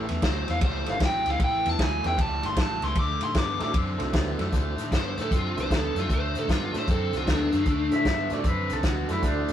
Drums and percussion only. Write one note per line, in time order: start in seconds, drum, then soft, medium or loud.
0.09 snare soft
0.09 ride medium
0.22 kick medium
0.22 snare loud
0.22 ride medium
0.48 snare soft
0.48 ride medium
0.61 kick loud
0.61 ride medium
0.86 snare soft
0.86 ride medium
1.00 kick medium
1.00 snare loud
1.00 ride medium
1.26 snare soft
1.26 ride medium
1.40 kick medium
1.40 ride medium
1.66 snare soft
1.66 ride medium
1.79 kick medium
1.79 snare loud
1.79 ride medium
2.04 snare soft
2.04 ride medium
2.18 kick loud
2.18 ride medium
2.43 snare soft
2.43 ride medium
2.56 kick medium
2.56 snare loud
2.56 ride medium
2.82 snare soft
2.82 ride medium
2.95 kick medium
2.95 ride medium
3.21 snare soft
3.21 ride medium
3.35 kick medium
3.35 snare loud
3.35 ride medium
3.60 snare soft
3.60 ride medium
3.74 kick medium
3.74 ride medium
4.00 snare soft
4.00 ride medium
4.13 kick medium
4.13 snare loud
4.13 ride medium
4.39 snare soft
4.39 ride medium
4.52 kick medium
4.52 snare soft
4.52 closed hi-hat medium
4.78 snare soft
4.78 closed hi-hat medium
4.92 kick medium
4.92 snare loud
4.92 closed hi-hat medium
5.17 snare soft
5.17 closed hi-hat medium
5.31 kick medium
5.31 closed hi-hat medium
5.57 snare soft
5.57 closed hi-hat medium
5.70 kick medium
5.70 snare loud
5.70 closed hi-hat medium
5.96 snare soft
5.96 closed hi-hat medium
6.09 kick medium
6.09 closed hi-hat medium
6.35 snare soft
6.35 closed hi-hat medium
6.49 kick medium
6.49 snare loud
6.49 closed hi-hat medium
6.74 snare soft
6.74 closed hi-hat medium
6.87 kick medium
6.87 closed hi-hat medium
7.13 snare soft
7.13 closed hi-hat medium
7.27 kick medium
7.27 snare loud
7.27 closed hi-hat medium
7.52 snare soft
7.52 closed hi-hat medium
7.65 kick medium
7.65 closed hi-hat medium
7.91 snare soft
7.91 closed hi-hat medium
8.05 kick medium
8.05 snare loud
8.05 closed hi-hat medium
8.30 snare soft
8.30 closed hi-hat medium
8.44 kick medium
8.44 closed hi-hat medium
8.70 snare soft
8.70 closed hi-hat medium
8.83 kick medium
8.83 snare loud
8.83 closed hi-hat medium
9.09 snare soft
9.09 closed hi-hat medium
9.23 kick medium
9.23 snare soft
9.23 closed hi-hat medium
9.48 snare soft
9.48 closed hi-hat medium